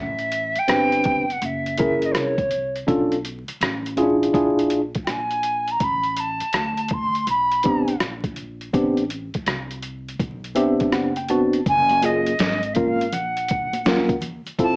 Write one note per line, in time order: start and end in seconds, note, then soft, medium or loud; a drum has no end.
0.00 0.53 A1 medium
0.00 0.60 E5 loud
0.19 closed hi-hat soft
0.32 closed hi-hat medium
0.56 1.33 G5 loud
0.56 muted upright bass stroke soft
0.56 closed hi-hat medium
0.68 1.38 G1 medium
0.68 1.24 C4 medium
0.68 1.24 D4 medium
0.68 1.24 G4 medium
0.68 1.24 B4 medium
0.68 cross-stick loud
0.68 closed hi-hat loud
0.92 closed hi-hat soft
1.04 kick medium
1.04 closed hi-hat medium
1.30 1.47 F#5 medium
1.30 closed hi-hat soft
1.42 2.11 F#1 medium
1.42 2.07 E5 medium
1.42 closed hi-hat medium
1.66 closed hi-hat soft
1.77 2.34 C#4 medium
1.77 2.34 E4 medium
1.77 2.34 G#4 medium
1.77 2.34 A#4 medium
1.77 kick medium
1.77 closed hi-hat medium
2.02 2.13 D#5 medium
2.02 closed hi-hat medium
2.12 2.84 C2 medium
2.12 2.19 C5 soft
2.12 cross-stick medium
2.12 closed hi-hat medium
2.18 2.77 C#5 medium
2.38 kick medium
2.38 closed hi-hat soft
2.51 closed hi-hat medium
2.75 closed hi-hat soft
2.87 3.45 B1 medium
2.87 3.16 C#4 medium
2.87 3.16 D4 medium
2.87 3.17 F4 medium
2.87 3.17 A4 medium
2.87 kick loud
2.87 closed hi-hat medium
3.12 closed hi-hat soft
3.25 closed hi-hat medium
3.48 muted upright bass stroke soft
3.48 closed hi-hat medium
3.61 4.30 A1 medium
3.61 cross-stick loud
3.61 closed hi-hat medium
3.86 closed hi-hat soft
3.97 4.06 C#4 medium
3.97 4.32 E4 medium
3.97 4.33 F4 medium
3.97 4.33 G#4 medium
3.97 closed hi-hat medium
4.03 4.32 D4 medium
4.23 closed hi-hat soft
4.33 5.04 A#1 medium
4.33 4.80 D4 medium
4.33 4.80 E4 medium
4.33 4.80 F4 medium
4.33 4.80 G#4 medium
4.33 kick medium
4.33 closed hi-hat medium
4.59 closed hi-hat soft
4.70 closed hi-hat medium
4.94 kick medium
4.94 closed hi-hat medium
5.04 5.77 A#1 medium
5.04 5.12 G5 medium
5.04 cross-stick medium
5.04 closed hi-hat medium
5.10 5.73 G#5 medium
5.31 closed hi-hat soft
5.43 closed hi-hat medium
5.68 5.85 A#5 medium
5.68 closed hi-hat soft
5.80 6.38 A1 medium
5.80 6.21 B5 loud
5.80 kick medium
5.80 closed hi-hat medium
6.04 closed hi-hat soft
6.17 6.95 A5 medium
6.17 closed hi-hat medium
6.41 muted upright bass stroke soft
6.41 closed hi-hat medium
6.53 7.23 D2 medium
6.53 cross-stick loud
6.53 closed hi-hat medium
6.78 closed hi-hat soft
6.89 kick medium
6.89 closed hi-hat medium
6.93 7.28 C6 loud
7.15 closed hi-hat soft
7.27 7.96 B1 medium
7.27 7.97 B5 medium
7.27 closed hi-hat medium
7.52 closed hi-hat soft
7.63 7.93 B3 medium
7.63 7.93 C4 medium
7.63 7.93 D4 medium
7.63 7.93 G4 medium
7.63 kick medium
7.63 closed hi-hat medium
7.88 closed hi-hat soft
8.00 8.70 A#1 medium
8.00 cross-stick loud
8.00 closed hi-hat medium
8.24 kick medium
8.24 closed hi-hat soft
8.36 closed hi-hat medium
8.61 closed hi-hat soft
8.73 9.31 A1 medium
8.73 9.02 B3 medium
8.73 9.02 C4 medium
8.73 9.03 D4 medium
8.73 9.03 G4 medium
8.73 kick loud
8.73 closed hi-hat medium
8.97 closed hi-hat soft
9.10 closed hi-hat medium
9.34 muted upright bass stroke soft
9.34 kick medium
9.34 closed hi-hat medium
9.46 10.16 C2 medium
9.46 cross-stick loud
9.46 closed hi-hat medium
9.71 closed hi-hat soft
9.82 closed hi-hat medium
10.08 closed hi-hat soft
10.19 10.89 B1 medium
10.19 kick medium
10.19 closed hi-hat medium
10.44 closed hi-hat soft
10.55 11.11 B3 medium
10.55 11.12 C4 medium
10.55 11.12 D4 medium
10.55 11.12 G4 medium
10.55 10.90 E5 medium
10.55 closed hi-hat medium
10.80 kick medium
10.80 closed hi-hat medium
10.92 11.62 F#1 medium
10.92 11.15 F#5 medium
10.92 cross-stick loud
10.92 closed hi-hat medium
11.16 11.29 G5 medium
11.16 closed hi-hat soft
11.28 11.58 B3 medium
11.28 11.59 C4 medium
11.28 11.59 D4 medium
11.28 11.59 F#4 medium
11.28 11.64 A5 medium
11.28 closed hi-hat medium
11.53 closed hi-hat soft
11.66 12.35 F#1 medium
11.66 12.06 G#5 loud
11.66 kick loud
11.66 closed hi-hat medium
11.66 shaker medium
11.89 closed hi-hat soft
11.89 high conga medium
11.89 shaker soft
12.02 12.31 A#3 medium
12.02 12.32 C#4 medium
12.02 12.32 F4 medium
12.02 12.32 G#4 medium
12.02 12.75 D#5 medium
12.02 closed hi-hat medium
12.02 high conga soft
12.02 shaker soft
12.26 closed hi-hat medium
12.26 shaker soft
12.39 13.09 G#1 medium
12.39 snare loud
12.39 closed hi-hat medium
12.39 shaker soft
12.63 closed hi-hat soft
12.63 shaker soft
12.73 13.05 A#3 medium
12.73 13.05 C#4 medium
12.73 13.05 F4 medium
12.73 13.05 A#4 medium
12.73 12.78 E5 medium
12.73 13.14 F5 medium
12.73 kick medium
12.73 closed hi-hat medium
12.73 low conga medium
12.73 shaker soft
13.00 closed hi-hat medium
13.00 shaker soft
13.12 13.82 A#1 medium
13.12 14.22 F#5 medium
13.12 closed hi-hat medium
13.12 high conga soft
13.12 low conga medium
13.12 shaker medium
13.37 closed hi-hat soft
13.37 shaker soft
13.48 kick medium
13.48 closed hi-hat medium
13.48 shaker soft
13.73 closed hi-hat medium
13.73 high conga medium
13.73 shaker soft
13.85 14.43 D#2 medium
13.85 14.14 A#3 medium
13.85 14.15 C#4 medium
13.85 14.15 F4 medium
13.85 14.15 A#4 medium
13.85 snare loud
13.85 closed hi-hat medium
13.85 shaker medium
14.08 kick medium
14.08 closed hi-hat soft
14.08 high conga medium
14.08 shaker soft
14.21 closed hi-hat medium
14.21 low conga medium
14.21 shaker soft
14.46 muted upright bass stroke soft
14.46 closed hi-hat soft
14.46 shaker soft
14.59 14.76 C4 medium
14.59 14.76 E4 medium
14.59 14.76 F4 medium
14.59 14.76 A4 medium
14.59 14.76 A5 loud
14.59 kick loud
14.59 closed hi-hat medium
14.59 shaker medium